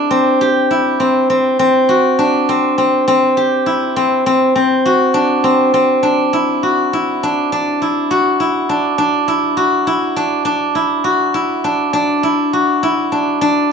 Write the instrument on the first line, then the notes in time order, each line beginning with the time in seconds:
guzheng
Already playing: C4 D4 E4 G#4
0.11 C4
0.41 G4
0.71 E4
1.00 C4
1.30 C4
1.59 C4
1.89 F#4
2.19 D4
2.49 C4
2.78 C4
3.08 C4
3.37 G4
3.66 E4
3.96 C4
4.26 C4
4.56 C4
4.86 F#4
5.14 D4
5.44 C4
5.74 C4
6.03 D4
6.33 E4
6.63 F#4
6.93 E4
7.23 D4
7.52 D4
7.82 E4
8.11 F#4
8.40 E4
8.69 D4
8.98 D4
9.28 E4
9.57 F#4
9.87 E4
10.16 D4
10.45 D4
10.75 E4
11.04 F#4
11.34 E4
11.64 D4
11.93 D4
12.23 E4
12.53 F#4
12.83 E4
13.12 D4
13.41 D4